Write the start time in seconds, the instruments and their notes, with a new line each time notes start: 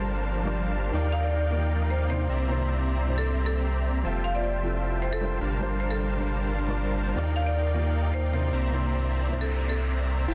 Already playing: sub bass G1, ambient pad F3 A#3 C4 G4, grand piano G3 D4 F4 A#4 C5 A5, supersaw synth G3 D4 A#4 C5 F5 A5, marimba A4
0.43 grand piano G3 D4 F4 A#4 D5 A5
0.91 sub bass D#2, grand piano D#3 A#3 F4 G4 D5, ambient pad D#3 G3 G4, supersaw synth D#4 A#4 D5 F5 G5
1.12 marimba F5
1.23 marimba D5
1.32 marimba D5
1.50 grand piano D#3 A#3 F4 G4 D5
1.90 marimba C5
2.09 grand piano C3 A#3 D4 E4 C5, marimba C5
2.29 sub bass C2, ambient pad C3 G3 E5, supersaw synth C4 C5 D5 E5 A#5
2.47 grand piano C3 A#3 D4 E4 C5
3.05 grand piano C3 A#3 D4 E4
3.09 grand piano C5
3.18 marimba A4
3.46 marimba A4
4.03 sub bass F1, grand piano F3 C4 G4 A4 E5, ambient pad F3, supersaw synth F4 C5 E5 G5 A5
4.24 marimba F5
4.35 marimba D5
4.44 marimba D5
4.62 grand piano F3 C4 E4 G4 A4
5.02 marimba C5
5.13 marimba A4
5.21 grand piano G3 D4 F4 A4 A#4 C5
5.41 sub bass G1, supersaw synth G3 D4 A#4 C5 F5 A5, ambient pad A#3 F4
5.59 grand piano G3 D4 F4 A#4 C5 A5
5.80 marimba C5
5.91 marimba A4
6.17 grand piano G3 D4 F4 A#4 A5
6.21 grand piano C5
6.66 grand piano G3 D4 F4 A#4 D5 A5
7.14 sub bass D#2, grand piano D#3 A#3 F4 G4, ambient pad D#3 G3 D5, supersaw synth D#4 A#4 D5 F5 G5
7.18 grand piano D5
7.36 marimba F5
7.46 marimba D5
7.55 marimba D5
7.74 grand piano D#3 A#3 F4 G4 D5
8.14 marimba C5
8.32 grand piano C3 A#3 D4 E4 C5, marimba C5
8.53 sub bass C2, ambient pad C3 G3 E5, supersaw synth C4 C5 D5 E5 A#5
8.70 grand piano C3 A#3 D4 E4 C5, noise sweep
9.29 grand piano C3 A#3 D4 E4
9.33 grand piano C5
9.41 marimba A4
9.70 marimba A4
10.28 sub bass F1, ambient pad F3 G4, synth arpeggio sound E4, supersaw synth F4 C5 E5 G5 A5